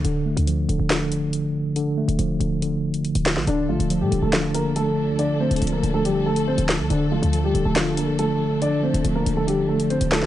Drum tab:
HH |x-----x-x---x---x---x---x-------|x-----x-x---x---x-----x-x-x-----|x-----x-x---x---x---x---x-------|x-----xxxx--x---x-----x---x-----|
CP |----------------x---------------|----------------------------x---|----------------x---------------|----------------------------x---|
SD |----------------o---------------|----------------------------o-o-|----------------o---------------|----------------------------o---|

HH |x-----x-x---x---x---x---x-------|x-----x-x---x---x-----x-x-x-----|
CP |----------------x---------------|----------------------------x---|
SD |----------------o---------------|----------------------------o-o-|